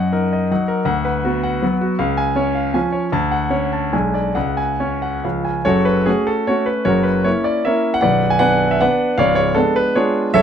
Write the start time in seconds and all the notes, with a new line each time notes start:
Already playing: F#2 D#5 F#5
0.13 D#4 A#4
0.33 D#5
0.51 F#3 D#4 F#5
0.68 A#4
0.85 D2 F#5
1.05 B4
1.25 B3 F#4
1.43 F#5
1.62 F#3 B3 B4
1.81 F#4
1.99 C#2 F5
2.17 G#5
2.36 C#4 C#5
2.55 F5
2.74 F3 C#4 G#5
2.92 C#5
3.12 D2 A5
3.31 F#5
3.50 C#4 C#5
3.73 A5
3.93 B1 G#3 D4 G#5
4.14 D5
4.35 C#2 F#5
4.57 G#5
4.80 C#4 C#5
5.02 F#5
5.24 C#2 F3 C#4 F5
5.45 G#5
5.65 F#1 F#2 F#4 A4 C#5
5.85 B4
6.06 A3 C#4 F#4 G#4
6.27 A4
6.47 A3 C#4 F#4 A4 C#5
6.66 B4
6.85 F#1 F#2 F#4 A#4 C#5
7.03 B4
7.24 A#3 C#4 E4 C#5
7.44 D5
7.65 A#3 C#4 E4 A#4 C#5 E5
7.94 F#5
8.01 B0 B1 B4 D5 F#5
8.30 G#5
8.39 B3 D4 B4 D5 F#5
8.71 E5
8.81 B3 D4 B4 D5 F#5
9.18 C#1 C#2 C#5 D5 F5
9.35 C#5
9.55 G#3 B3 D4 A4
9.76 B4
9.96 G#3 B3 D4 F4 G#4 C#5
10.34 F#1 F#2 A4 C#5 E5